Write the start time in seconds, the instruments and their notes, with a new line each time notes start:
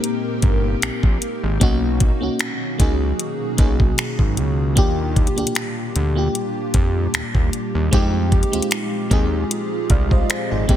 Already playing: ambient pad A#2 G#3 A#3 C4 G4, fm electric piano A#3 C4 D#4 G4 A#4
0.04 closed hi-hat
0.42 analog synth bass G1, kick, closed hi-hat
0.82 analog synth bass A#1, finger snap, closed hi-hat
1.03 analog synth bass A#1, kick
1.22 closed hi-hat
1.43 analog synth bass G#1
1.60 analog synth bass B1, ambient pad B2 D#3 F#3 F#4, fm electric piano A#3 C#4 D#4 F#4, kick, closed hi-hat
2.00 kick, closed hi-hat
2.21 analog synth bass C#2, fm electric piano A#3 C#4 D#4 F#4
2.39 finger snap, closed hi-hat
2.78 analog synth bass C#2, fm electric piano A#3 C#4 D#4 G#4, kick, closed hi-hat
3.19 closed hi-hat
3.57 analog synth bass B1, fm electric piano A#3 C#4 D#4 G#4, kick, closed hi-hat
3.80 kick
3.98 finger snap, closed hi-hat
4.19 analog synth bass G#1, kick
4.37 analog synth bass C#2, closed hi-hat
4.76 analog synth bass D#2, ambient pad A#2 G3 D4 G4, fm electric piano A#3 D4 F4 G4, kick, closed hi-hat
5.16 kick, closed hi-hat
5.27 closed hi-hat
5.36 analog synth bass D2, fm electric piano A#3 D4 F4 G4, closed hi-hat
5.47 closed hi-hat
5.55 finger snap, closed hi-hat
5.96 analog synth bass D2, closed hi-hat
6.15 fm electric piano A#3 D4 F4 G4
6.35 closed hi-hat
6.74 analog synth bass F2, kick, closed hi-hat
7.14 analog synth bass D#2, finger snap, closed hi-hat
7.35 analog synth bass D#2, kick
7.53 closed hi-hat
7.75 analog synth bass D#2
7.91 analog synth bass F2, ambient pad F3 G#3 C4 F4, fm electric piano G#3 C4 D#4 G4, kick, closed hi-hat
8.32 kick, closed hi-hat
8.43 closed hi-hat
8.52 analog synth bass D#2, fm electric piano G#3 C4 D#4 F4, closed hi-hat
8.62 closed hi-hat
8.71 finger snap, closed hi-hat
9.10 analog synth bass D#2, fm electric piano G#3 C4 D#4 G#4, kick, closed hi-hat
9.51 closed hi-hat
9.90 analog synth bass C2, fm electric piano D5 F5, kick, closed hi-hat
10.11 fm electric piano C5 D#5, kick
10.30 fm electric piano G#4 C5, finger snap, closed hi-hat
10.51 analog synth bass G#1, fm electric piano F4 G#4
10.68 analog synth bass G#1, fm electric piano A#3 C4 D#4 G4, kick, closed hi-hat